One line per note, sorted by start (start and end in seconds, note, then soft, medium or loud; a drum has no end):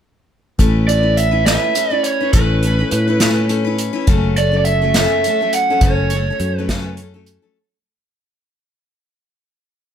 0.59 1.57 A1 medium
0.59 0.88 A3 medium
0.59 0.89 C#4 medium
0.59 0.88 E4 medium
0.59 0.89 B4 medium
0.59 kick medium
0.59 closed hi-hat medium
0.88 1.03 A3 medium
0.88 1.02 C#4 medium
0.88 1.03 E4 soft
0.88 1.00 B4 medium
0.88 1.18 D5 medium
0.88 closed hi-hat medium
1.01 1.31 C#4 soft
1.01 1.32 E4 soft
1.01 1.30 B4 soft
1.17 1.45 E5 medium
1.17 closed hi-hat medium
1.31 1.46 C#4 soft
1.31 1.45 E4 soft
1.31 1.46 B4 soft
1.46 1.73 A3 medium
1.46 1.76 C#4 medium
1.46 1.75 E4 medium
1.46 1.76 B4 medium
1.46 1.93 E5 medium
1.46 snare medium
1.46 closed hi-hat medium
1.75 1.90 A3 medium
1.75 1.90 C#4 medium
1.75 1.91 E4 medium
1.75 1.89 B4 medium
1.75 closed hi-hat medium
1.90 2.20 C#4 soft
1.90 2.20 E4 soft
1.90 2.19 B4 medium
1.90 2.06 D5 medium
2.03 2.33 C#5 medium
2.03 closed hi-hat medium
2.20 2.34 C#4 soft
2.20 2.34 E4 soft
2.20 2.34 B4 soft
2.33 2.82 A1 medium
2.33 2.63 A3 medium
2.33 2.63 C#4 medium
2.33 2.63 E4 medium
2.33 3.45 B4 medium
2.33 2.64 B4 medium
2.33 kick medium
2.33 closed hi-hat medium
2.63 2.79 A3 soft
2.63 2.79 E4 soft
2.63 closed hi-hat medium
2.67 2.79 C#4 medium
2.67 2.78 B4 medium
2.79 3.07 C#4 soft
2.79 3.08 E4 soft
2.79 3.06 B4 soft
2.91 3.89 A2 medium
2.91 closed hi-hat medium
3.07 3.21 C#4 soft
3.07 3.20 E4 soft
3.07 3.21 B4 soft
3.20 3.48 A3 medium
3.20 3.49 C#4 medium
3.20 3.48 E4 medium
3.20 3.50 B4 medium
3.20 snare medium
3.20 closed hi-hat medium
3.49 3.64 A3 medium
3.49 3.64 C#4 medium
3.49 3.64 E4 medium
3.49 3.63 B4 medium
3.49 closed hi-hat soft
3.65 3.92 C#4 soft
3.65 3.94 E4 soft
3.65 3.92 B4 medium
3.78 closed hi-hat medium
3.93 4.08 C#4 medium
3.93 4.08 E4 soft
3.93 4.07 B4 medium
4.07 5.05 F#1 medium
4.07 4.36 F#2 medium
4.07 4.36 C#3 medium
4.07 4.35 F#3 medium
4.07 4.35 A3 medium
4.07 4.36 C#4 medium
4.07 4.37 A4 medium
4.07 kick loud
4.07 closed hi-hat medium
4.36 4.51 F#3 soft
4.36 4.51 A3 medium
4.36 4.51 C#4 soft
4.36 4.50 A4 medium
4.36 4.56 D5 medium
4.36 closed hi-hat soft
4.51 4.81 F#3 soft
4.51 4.81 A3 soft
4.51 4.81 C#4 soft
4.51 4.80 A4 soft
4.57 4.65 D5 medium
4.65 4.95 E5 medium
4.65 closed hi-hat medium
4.82 4.96 F#3 soft
4.82 4.96 A3 soft
4.82 4.95 C#4 medium
4.82 4.95 A4 soft
4.94 5.25 F#2 medium
4.94 5.25 C#3 medium
4.94 5.25 F#3 medium
4.94 5.25 A3 medium
4.94 5.25 A4 medium
4.94 5.54 E5 medium
4.94 snare medium
4.94 closed hi-hat medium
4.98 5.25 C#4 medium
5.24 5.39 F#3 medium
5.24 5.40 A3 medium
5.24 5.40 C#4 medium
5.24 closed hi-hat soft
5.29 5.40 A4 medium
5.41 5.69 F#3 soft
5.41 5.69 A3 soft
5.41 5.69 C#4 soft
5.41 5.68 A4 soft
5.53 5.83 F#5 medium
5.53 closed hi-hat medium
5.70 5.84 F#3 soft
5.70 5.83 A3 soft
5.70 5.83 C#4 soft
5.70 5.83 A4 medium
5.81 6.30 F#1 medium
5.81 6.12 F#2 medium
5.81 6.12 C#3 medium
5.81 6.12 F#3 medium
5.81 6.12 A3 medium
5.81 6.60 C#5 medium
5.81 kick loud
5.81 closed hi-hat medium
5.85 6.12 C#4 medium
5.85 6.13 A4 medium
6.10 closed hi-hat medium
6.15 6.27 F#3 medium
6.15 6.27 A3 medium
6.15 6.28 C#4 medium
6.15 6.28 A4 medium
6.30 6.58 F#3 soft
6.30 6.58 A3 soft
6.30 6.57 C#4 soft
6.30 6.57 A4 soft
6.40 7.37 F#2 medium
6.40 closed hi-hat medium
6.58 6.71 F#3 soft
6.58 6.71 A3 medium
6.58 6.71 C#4 medium
6.58 6.71 A4 medium
6.58 6.94 B4 medium
6.69 6.99 F#2 medium
6.69 6.99 C#3 medium
6.69 kick medium
6.69 snare medium
6.69 closed hi-hat medium
6.73 6.99 F#3 medium
6.73 7.00 A3 medium
6.73 7.00 C#4 medium
6.73 7.00 A4 medium
6.97 7.14 F#3 medium
6.97 closed hi-hat medium
7.02 7.14 A3 medium
7.02 7.14 C#4 medium
7.02 7.13 A4 medium
7.14 7.43 F#3 soft
7.14 7.42 A3 soft
7.14 7.42 C#4 soft
7.14 7.41 A4 medium
7.26 closed hi-hat medium
7.42 7.57 F#3 soft
7.42 7.57 A3 soft
7.42 7.57 C#4 soft
7.42 7.56 A4 medium